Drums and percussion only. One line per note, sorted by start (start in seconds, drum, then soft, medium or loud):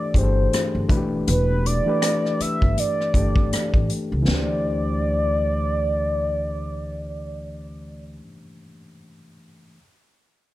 0.14 kick medium
0.14 closed hi-hat medium
0.53 cross-stick medium
0.53 closed hi-hat medium
0.89 kick medium
0.89 closed hi-hat medium
1.27 closed hi-hat medium
1.66 closed hi-hat medium
2.02 cross-stick medium
2.02 closed hi-hat medium
2.26 cross-stick soft
2.40 closed hi-hat medium
2.62 kick medium
2.78 closed hi-hat medium
3.01 cross-stick soft
3.14 kick medium
3.14 closed hi-hat soft
3.36 kick medium
3.53 cross-stick medium
3.53 closed hi-hat medium
3.74 kick medium
3.90 closed hi-hat medium
4.28 snare medium